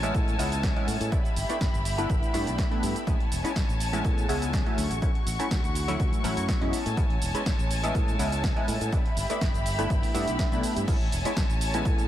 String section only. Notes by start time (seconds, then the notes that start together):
Already playing: C#5 G#5 A5
1.12 G4 E5 B5
3.07 C#5 G#5 A5
4.78 F#4 C#6
6.74 C#5 G#5 A5
8.92 G4 E5 B5
10.88 C#5 G#5 A5